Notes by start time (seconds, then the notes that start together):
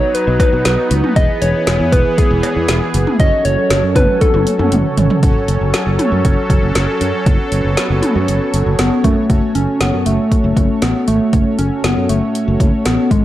Already playing: F#3 B3 D#4 F#4 B4 C#5
0.14 B4, closed hi-hat
0.27 B1
0.40 B4, kick, closed hi-hat, cowbell
0.53 B2
0.65 B1, snare, closed hi-hat
0.91 C#2, closed hi-hat
1.04 mid tom
1.16 E1 E3 E4 G#4 B4 D#5, kick, closed hi-hat
1.42 E1 C#5, closed hi-hat
1.67 E1, snare, closed hi-hat
1.80 E2
1.92 E1 B4, kick, closed hi-hat
2.18 G#4, kick, closed hi-hat
2.31 E1
2.43 closed hi-hat, cowbell
2.56 E2
2.68 E1, snare, closed hi-hat
2.94 F#1, closed hi-hat
3.07 mid tom
3.20 F#1 F#3 C#4 F#4 A4 C#5 D#5, kick, closed hi-hat
3.45 F#1 C#5, closed hi-hat
3.70 F#1, snare, closed hi-hat
3.83 F#2
3.96 F#1 B4, kick, closed hi-hat, mid tom
4.21 A4, kick, closed hi-hat, high tom
4.34 F#1, high tom
4.47 closed hi-hat
4.59 F#2, mid tom
4.72 F#1, closed hi-hat, mid tom
4.97 G#1, closed hi-hat, floor tom
5.10 floor tom
5.23 F#1 F#3 C#4 F#4 A4 C#5, kick, closed hi-hat
5.48 F#1, closed hi-hat
5.61 F#1
5.74 snare, closed hi-hat
5.86 F#1
5.99 closed hi-hat, mid tom
6.12 F#2
6.25 F#1, kick, closed hi-hat
6.50 F#1, kick, closed hi-hat
6.63 F#1
6.75 F#1, snare, closed hi-hat
7.01 F#2, closed hi-hat
7.26 F#1 B3, kick, closed hi-hat
7.52 F#1, closed hi-hat
7.64 F#1
7.77 snare, closed hi-hat
7.90 F#1
8.02 closed hi-hat, mid tom
8.15 F#2
8.28 F#1, closed hi-hat
8.54 F#1, closed hi-hat
8.66 F#1
8.79 F#1 B3, snare, closed hi-hat
9.04 F#2 A3, kick, closed hi-hat
9.30 F#1 C#4 F#4 A4 C#5, kick, closed hi-hat
9.55 F#1 C#4, closed hi-hat
9.81 F#1 B3, snare, closed hi-hat
9.93 F#2
10.06 F#1 A3, closed hi-hat
10.32 kick, closed hi-hat
10.44 F#1
10.57 F#1, kick, closed hi-hat
10.82 A1 B3, snare, closed hi-hat
11.08 G#1 A3, closed hi-hat
11.33 F#1, kick, closed hi-hat
11.58 F#1 C#4, closed hi-hat
11.84 F#1 B3, snare, closed hi-hat
11.97 F#2
12.09 F#1 A3, closed hi-hat
12.35 closed hi-hat
12.48 F#1
12.60 F#1, kick, closed hi-hat
12.85 A1 B3, snare, closed hi-hat
13.11 G#1 G#3, kick, closed hi-hat